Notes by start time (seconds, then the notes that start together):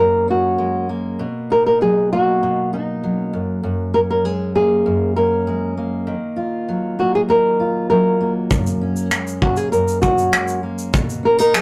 Already playing: F#2 G#3 A#3 C#4
0.00 A#4
0.28 C#4 F#4
0.58 G#3
0.89 A#3
1.19 B2
1.50 D#4 A#4
1.66 A#4
1.81 F#3 G#4
2.13 A#3 F#4
2.43 B2
2.73 D#4
3.03 F#3
3.17 C#4
3.33 F#2
3.63 F#2
3.94 C#4 A#4
4.10 A#4
4.25 G#3 G#4
4.55 A#3 G#4
4.86 F#2
5.16 C#4 A#4
5.47 G#3
5.77 A#3
6.07 D#3
6.36 F4
6.68 F#3
6.99 A#3 F#4
7.15 G#4
7.29 D#3 A#4
7.60 F4
7.90 F#3 A#4
8.21 A#3
8.51 F#2, kick, shaker
8.67 shaker
8.81 C#4
8.96 shaker
9.11 G#3, finger snap, shaker
9.27 shaker
9.42 A#3 F#4, kick
9.56 G#4, shaker
9.72 F#2 A#4, shaker
9.88 shaker
10.02 C#4 F#4, kick, shaker
10.18 shaker
10.32 G#3, finger snap, shaker
10.48 shaker
10.63 A#3
10.79 shaker
10.93 B2, kick, shaker
11.09 shaker
11.23 C#4 A#4
11.38 D#4 A#4, shaker
11.53 F#3 G#4, finger snap, shaker